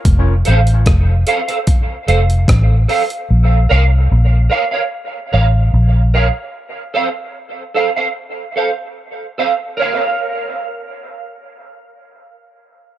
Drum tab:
HH |x-xxx-xxx-xxx-ox|----------------|----------------|----------------|
SD |----r-------r---|----------------|----------------|----------------|
BD |o---o---o---o---|----------------|----------------|----------------|